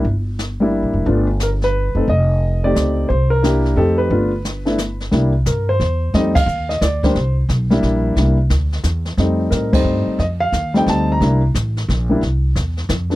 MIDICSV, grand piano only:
0, 0, Header, 1, 2, 480
1, 0, Start_track
1, 0, Tempo, 337838
1, 71, Time_signature, 3, 2, 24, 8
1, 18691, End_track
2, 0, Start_track
2, 0, Title_t, "Grand piano"
2, 0, Program_c, 0, 0
2, 855, Note_on_c, 0, 55, 62
2, 872, Note_on_c, 0, 58, 55
2, 877, Note_on_c, 0, 62, 60
2, 882, Note_on_c, 0, 64, 72
2, 1478, Note_off_c, 0, 55, 0
2, 1486, Note_off_c, 0, 58, 0
2, 1489, Note_off_c, 0, 62, 0
2, 1492, Note_off_c, 0, 64, 0
2, 1506, Note_on_c, 0, 57, 65
2, 1517, Note_on_c, 0, 59, 55
2, 1525, Note_on_c, 0, 62, 56
2, 1534, Note_on_c, 0, 65, 66
2, 1788, Note_off_c, 0, 57, 0
2, 1794, Note_off_c, 0, 59, 0
2, 1798, Note_off_c, 0, 62, 0
2, 1802, Note_off_c, 0, 65, 0
2, 2031, Note_on_c, 0, 70, 82
2, 2102, Note_off_c, 0, 70, 0
2, 2330, Note_on_c, 0, 71, 89
2, 2777, Note_on_c, 0, 57, 60
2, 2791, Note_on_c, 0, 60, 55
2, 2791, Note_on_c, 0, 63, 51
2, 2801, Note_on_c, 0, 69, 61
2, 2927, Note_off_c, 0, 71, 0
2, 2938, Note_off_c, 0, 57, 0
2, 2944, Note_off_c, 0, 60, 0
2, 2945, Note_off_c, 0, 63, 0
2, 2950, Note_off_c, 0, 69, 0
2, 2976, Note_on_c, 0, 75, 95
2, 3747, Note_on_c, 0, 57, 58
2, 3754, Note_on_c, 0, 74, 85
2, 3757, Note_on_c, 0, 60, 54
2, 3767, Note_on_c, 0, 63, 54
2, 3774, Note_on_c, 0, 67, 65
2, 3780, Note_off_c, 0, 75, 0
2, 4360, Note_off_c, 0, 74, 0
2, 4367, Note_off_c, 0, 57, 0
2, 4372, Note_off_c, 0, 60, 0
2, 4377, Note_off_c, 0, 63, 0
2, 4381, Note_off_c, 0, 67, 0
2, 4386, Note_on_c, 0, 72, 85
2, 4680, Note_off_c, 0, 72, 0
2, 4694, Note_on_c, 0, 70, 87
2, 4869, Note_on_c, 0, 58, 63
2, 4878, Note_on_c, 0, 62, 63
2, 4887, Note_on_c, 0, 64, 59
2, 4893, Note_on_c, 0, 67, 70
2, 5310, Note_off_c, 0, 70, 0
2, 5340, Note_off_c, 0, 58, 0
2, 5344, Note_off_c, 0, 62, 0
2, 5349, Note_off_c, 0, 64, 0
2, 5351, Note_on_c, 0, 57, 60
2, 5352, Note_off_c, 0, 67, 0
2, 5357, Note_on_c, 0, 60, 58
2, 5361, Note_on_c, 0, 69, 86
2, 5370, Note_on_c, 0, 63, 57
2, 5375, Note_on_c, 0, 67, 67
2, 5649, Note_off_c, 0, 69, 0
2, 5653, Note_on_c, 0, 71, 84
2, 5802, Note_off_c, 0, 57, 0
2, 5823, Note_on_c, 0, 57, 57
2, 5831, Note_on_c, 0, 59, 54
2, 5838, Note_on_c, 0, 62, 52
2, 5841, Note_off_c, 0, 60, 0
2, 5847, Note_on_c, 0, 65, 66
2, 5848, Note_off_c, 0, 63, 0
2, 5850, Note_off_c, 0, 67, 0
2, 6111, Note_off_c, 0, 57, 0
2, 6115, Note_off_c, 0, 59, 0
2, 6118, Note_off_c, 0, 62, 0
2, 6123, Note_off_c, 0, 65, 0
2, 6612, Note_on_c, 0, 57, 56
2, 6621, Note_on_c, 0, 59, 53
2, 6622, Note_on_c, 0, 62, 57
2, 6634, Note_on_c, 0, 64, 69
2, 6778, Note_off_c, 0, 57, 0
2, 6782, Note_off_c, 0, 59, 0
2, 6783, Note_off_c, 0, 62, 0
2, 6789, Note_off_c, 0, 64, 0
2, 7047, Note_off_c, 0, 71, 0
2, 7265, Note_on_c, 0, 55, 59
2, 7275, Note_on_c, 0, 58, 56
2, 7281, Note_on_c, 0, 62, 57
2, 7292, Note_on_c, 0, 64, 63
2, 7552, Note_off_c, 0, 55, 0
2, 7558, Note_off_c, 0, 58, 0
2, 7560, Note_off_c, 0, 62, 0
2, 7566, Note_off_c, 0, 64, 0
2, 7771, Note_on_c, 0, 70, 72
2, 8085, Note_off_c, 0, 70, 0
2, 8085, Note_on_c, 0, 72, 94
2, 8730, Note_on_c, 0, 55, 64
2, 8734, Note_on_c, 0, 75, 92
2, 8735, Note_on_c, 0, 57, 61
2, 8746, Note_on_c, 0, 60, 59
2, 8751, Note_off_c, 0, 72, 0
2, 8758, Note_on_c, 0, 63, 74
2, 9004, Note_off_c, 0, 55, 0
2, 9007, Note_off_c, 0, 57, 0
2, 9013, Note_off_c, 0, 60, 0
2, 9019, Note_off_c, 0, 63, 0
2, 9025, Note_on_c, 0, 77, 114
2, 9047, Note_off_c, 0, 75, 0
2, 9508, Note_on_c, 0, 75, 81
2, 9524, Note_off_c, 0, 77, 0
2, 9671, Note_off_c, 0, 75, 0
2, 9685, Note_on_c, 0, 74, 83
2, 9999, Note_on_c, 0, 55, 65
2, 10002, Note_off_c, 0, 74, 0
2, 10006, Note_on_c, 0, 72, 76
2, 10012, Note_on_c, 0, 58, 60
2, 10023, Note_on_c, 0, 62, 57
2, 10035, Note_on_c, 0, 67, 66
2, 10151, Note_off_c, 0, 55, 0
2, 10158, Note_off_c, 0, 58, 0
2, 10163, Note_off_c, 0, 62, 0
2, 10169, Note_off_c, 0, 67, 0
2, 10446, Note_off_c, 0, 72, 0
2, 10946, Note_on_c, 0, 55, 75
2, 10955, Note_on_c, 0, 58, 70
2, 10971, Note_on_c, 0, 62, 71
2, 10977, Note_on_c, 0, 64, 84
2, 11567, Note_off_c, 0, 55, 0
2, 11571, Note_off_c, 0, 58, 0
2, 11579, Note_off_c, 0, 62, 0
2, 11582, Note_off_c, 0, 64, 0
2, 11600, Note_on_c, 0, 55, 52
2, 11613, Note_on_c, 0, 58, 52
2, 11626, Note_on_c, 0, 62, 51
2, 11640, Note_on_c, 0, 64, 56
2, 11878, Note_off_c, 0, 55, 0
2, 11885, Note_off_c, 0, 58, 0
2, 11891, Note_off_c, 0, 62, 0
2, 11898, Note_off_c, 0, 64, 0
2, 13037, Note_on_c, 0, 55, 55
2, 13042, Note_on_c, 0, 57, 56
2, 13053, Note_on_c, 0, 60, 55
2, 13066, Note_on_c, 0, 63, 68
2, 13506, Note_on_c, 0, 70, 65
2, 13764, Note_off_c, 0, 55, 0
2, 13767, Note_off_c, 0, 57, 0
2, 13772, Note_off_c, 0, 60, 0
2, 13778, Note_off_c, 0, 63, 0
2, 13817, Note_on_c, 0, 55, 67
2, 13826, Note_on_c, 0, 72, 84
2, 13829, Note_on_c, 0, 57, 60
2, 13830, Note_off_c, 0, 70, 0
2, 13834, Note_on_c, 0, 60, 59
2, 13848, Note_on_c, 0, 63, 77
2, 14439, Note_off_c, 0, 55, 0
2, 14446, Note_off_c, 0, 57, 0
2, 14448, Note_off_c, 0, 60, 0
2, 14455, Note_off_c, 0, 63, 0
2, 14487, Note_on_c, 0, 75, 83
2, 14498, Note_off_c, 0, 72, 0
2, 14558, Note_off_c, 0, 75, 0
2, 14783, Note_on_c, 0, 77, 104
2, 15230, Note_off_c, 0, 77, 0
2, 15261, Note_on_c, 0, 55, 73
2, 15269, Note_on_c, 0, 57, 61
2, 15280, Note_on_c, 0, 60, 65
2, 15294, Note_on_c, 0, 63, 73
2, 15310, Note_on_c, 0, 79, 88
2, 15464, Note_off_c, 0, 79, 0
2, 15477, Note_on_c, 0, 81, 100
2, 15773, Note_off_c, 0, 81, 0
2, 15798, Note_on_c, 0, 82, 93
2, 15880, Note_off_c, 0, 55, 0
2, 15884, Note_off_c, 0, 57, 0
2, 15890, Note_off_c, 0, 60, 0
2, 15896, Note_off_c, 0, 63, 0
2, 15924, Note_on_c, 0, 55, 57
2, 15933, Note_on_c, 0, 58, 53
2, 15946, Note_on_c, 0, 62, 55
2, 15951, Note_on_c, 0, 64, 65
2, 16196, Note_off_c, 0, 55, 0
2, 16201, Note_off_c, 0, 58, 0
2, 16207, Note_off_c, 0, 62, 0
2, 16210, Note_off_c, 0, 64, 0
2, 16219, Note_off_c, 0, 82, 0
2, 17183, Note_on_c, 0, 55, 61
2, 17196, Note_on_c, 0, 58, 54
2, 17199, Note_on_c, 0, 62, 57
2, 17210, Note_on_c, 0, 64, 65
2, 17337, Note_off_c, 0, 55, 0
2, 17344, Note_off_c, 0, 58, 0
2, 17345, Note_off_c, 0, 62, 0
2, 17351, Note_off_c, 0, 64, 0
2, 18615, Note_on_c, 0, 57, 61
2, 18627, Note_on_c, 0, 59, 50
2, 18632, Note_on_c, 0, 62, 52
2, 18642, Note_on_c, 0, 65, 59
2, 18691, Note_off_c, 0, 57, 0
2, 18691, Note_off_c, 0, 59, 0
2, 18691, Note_off_c, 0, 62, 0
2, 18691, Note_off_c, 0, 65, 0
2, 18691, End_track
0, 0, End_of_file